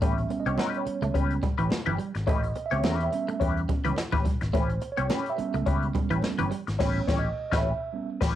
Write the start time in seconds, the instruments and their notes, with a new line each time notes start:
0.02 fingered electric bass A1, tine electric piano G3 B3 C#4 E5, clean electric guitar A3 C#4 G4 B4, kick, closed hi-hat, muted conga
0.18 muted clean electric guitar stroke, closed hi-hat
0.29 tine electric piano G3 B3 C#4, muted clean electric guitar stroke, closed hi-hat, muted conga
0.40 tine electric piano D#5
0.46 fingered electric bass C2, clean electric guitar C4 C#4 G4 C#5, closed hi-hat
0.58 clean electric guitar C4 C#4 F#4 A#4, snare, high conga
0.69 clean electric guitar C#4 G4 B4
0.74 tine electric piano C#5, closed hi-hat
0.86 muted fingered electric bass stroke, muted clean electric guitar stroke, closed hi-hat
1.02 fingered electric bass C#2, clean electric guitar A3, muted clean electric guitar stroke, closed hi-hat
1.14 fingered electric bass C#2, tine electric piano G3 B3 C#4, clean electric guitar C#4 G4 B4, muted clean electric guitar stroke, kick, closed hi-hat
1.30 closed hi-hat
1.42 clean electric guitar G3, muted clean electric guitar stroke, kick, closed hi-hat, muted conga, low conga
1.58 fingered electric bass A1, clean electric guitar E3 C#4 G4 B4, closed hi-hat
1.70 muted clean electric guitar stroke, muted fingered electric bass stroke, snare, high conga
1.86 fingered electric bass G1, clean electric guitar E3 C#4 G4 B4, closed hi-hat, high conga
1.99 clean electric guitar G3, muted clean electric guitar stroke, closed hi-hat
2.15 fingered electric bass G#1, muted clean electric guitar stroke, snare, closed hi-hat
2.27 fingered electric bass A1, clean electric guitar A3 C#4 G4 B4, tine electric piano D#5, kick, closed hi-hat, muted conga
2.43 muted clean electric guitar stroke, closed hi-hat
2.55 muted clean electric guitar stroke, closed hi-hat
2.66 tine electric piano E5
2.71 fingered electric bass C#2, clean electric guitar C4 C#4 G4 C#5, closed hi-hat
2.83 fingered electric bass E2, clean electric guitar C4 C#4 F#4 A#4, snare, high conga
2.94 clean electric guitar C#4 G4 B4
3.00 tine electric piano E5, closed hi-hat
3.12 tine electric piano G3 B3 C#4, muted clean electric guitar stroke, closed hi-hat
3.28 clean electric guitar A3, muted clean electric guitar stroke, closed hi-hat
3.40 fingered electric bass E2, clean electric guitar C#4 G4 B4, muted clean electric guitar stroke, kick, closed hi-hat
3.57 closed hi-hat
3.69 clean electric guitar G3, muted clean electric guitar stroke, kick, closed hi-hat, muted conga
3.84 fingered electric bass C#2, clean electric guitar E3 C#4 G4 B4, closed hi-hat
3.96 muted clean electric guitar stroke, muted fingered electric bass stroke, snare, high conga
4.12 fingered electric bass A1, clean electric guitar E3 C#4 G4 B4, kick, closed hi-hat, high conga
4.25 clean electric guitar G3, kick, closed hi-hat
4.41 fingered electric bass G#1, muted clean electric guitar stroke, snare, closed hi-hat
4.53 fingered electric bass A1, clean electric guitar A3 C#4 G4 B4, tine electric piano C5, kick, closed hi-hat, muted conga
4.69 muted clean electric guitar stroke, closed hi-hat
4.81 muted clean electric guitar stroke, closed hi-hat
4.92 tine electric piano C#5
4.97 fingered electric bass C2, clean electric guitar C4 C#4 G4 C#5, closed hi-hat
5.10 clean electric guitar C#4 G4 B4, snare, high conga
5.26 tine electric piano E5, closed hi-hat
5.38 tine electric piano G3 B3 C#4, muted clean electric guitar stroke, muted fingered electric bass stroke, closed hi-hat
5.54 fingered electric bass C#2, clean electric guitar A3, muted clean electric guitar stroke, closed hi-hat
5.66 fingered electric bass C#2, clean electric guitar C#4 G4 B4, muted clean electric guitar stroke, kick, closed hi-hat
5.82 closed hi-hat
5.94 clean electric guitar G3, muted clean electric guitar stroke, kick, closed hi-hat, muted conga, low conga
6.10 fingered electric bass A1, clean electric guitar E3 C#4 G4 B4, closed hi-hat
6.22 tine electric piano G3 B3 C#4, muted clean electric guitar stroke, muted fingered electric bass stroke, snare, high conga
6.38 fingered electric bass G1, clean electric guitar E3 C#4 G4 B4, closed hi-hat, high conga
6.51 clean electric guitar G3, muted clean electric guitar stroke, closed hi-hat
6.67 fingered electric bass G#1, muted clean electric guitar stroke, snare, closed hi-hat
6.79 fingered electric bass A1, tine electric piano G3 B3 C#4 C#5, clean electric guitar C#4 G4 B4, kick, snare, crash
7.08 fingered electric bass A1, clean electric guitar C#4 G4 C#5, kick, snare
7.19 tine electric piano D#5
7.50 fingered electric bass A1, clean electric guitar C#4 G4 B4, tine electric piano D#5, kick, snare
7.57 tine electric piano E5
7.93 tine electric piano G3 B3 C#4
8.21 fingered electric bass A1, clean electric guitar C#4 G4 B4, kick, snare, crash